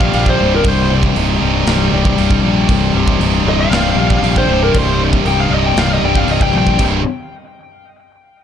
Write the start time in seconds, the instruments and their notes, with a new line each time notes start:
Already playing: distorted electric guitar C2 G2 C3 G3 D#4, lead electric guitar F5
0.01 kick
0.13 fingered electric bass A#1, distorted electric guitar G2 G3, open hi-hat
0.26 lead electric guitar C5, kick
0.39 fingered electric bass C1, distorted electric guitar C3 G3
0.55 lead electric guitar A#4
0.64 fingered electric bass C1, distorted electric guitar C2, kick, open hi-hat
0.68 lead electric guitar C5
0.90 distorted electric guitar C3
1.03 kick
1.16 fingered electric bass C1, distorted electric guitar G2 D#4, open hi-hat
1.40 fingered electric bass C1, distorted electric guitar C3 G3
1.67 fingered electric bass C1, distorted electric guitar C3 G3, snare, open hi-hat
1.92 fingered electric bass C1, distorted electric guitar G2 G3
2.05 kick
2.17 fingered electric bass C1, distorted electric guitar G2 G3, open hi-hat
2.31 kick
2.42 fingered electric bass A#1, distorted electric guitar C3 G3
2.67 fingered electric bass C1, distorted electric guitar C2, kick, open hi-hat
2.93 fingered electric bass C1, distorted electric guitar C3
3.08 kick
3.19 fingered electric bass C1, distorted electric guitar G2 D#4, open hi-hat
3.45 fingered electric bass C1, distorted electric guitar C3 G3
3.49 lead electric guitar D#5
3.60 lead electric guitar F5
3.71 fingered electric bass C1, distorted electric guitar C3 G3, snare, open hi-hat
3.97 fingered electric bass A#1, distorted electric guitar G2 G3
4.10 kick
4.22 fingered electric bass A#1, distorted electric guitar G2 G3, open hi-hat
4.36 lead electric guitar C5, kick
4.48 fingered electric bass C1, distorted electric guitar C3 G3
4.64 lead electric guitar A#4
4.74 fingered electric bass C1, distorted electric guitar C2, kick, open hi-hat
4.78 lead electric guitar C5
4.99 distorted electric guitar C3
5.13 kick
5.25 fingered electric bass C1, distorted electric guitar G2 D#4, lead electric guitar G5, open hi-hat
5.40 lead electric guitar F5
5.51 fingered electric bass C1, distorted electric guitar C3 G3, lead electric guitar D#5
5.66 lead electric guitar G5
5.76 fingered electric bass C1, distorted electric guitar C3 G3, lead electric guitar F5, snare, open hi-hat
5.93 lead electric guitar D#5
6.02 fingered electric bass C1, distorted electric guitar G2 G3, lead electric guitar G5
6.15 lead electric guitar F5, kick
6.28 fingered electric bass C1, distorted electric guitar G2 G3, lead electric guitar D#5, open hi-hat
6.41 lead electric guitar G5, kick
6.53 fingered electric bass A#1, distorted electric guitar C3 G3, high tom
6.58 lead electric guitar G5
6.67 kick
6.77 fingered electric bass C1, distorted electric guitar C2 G2 C3, kick, crash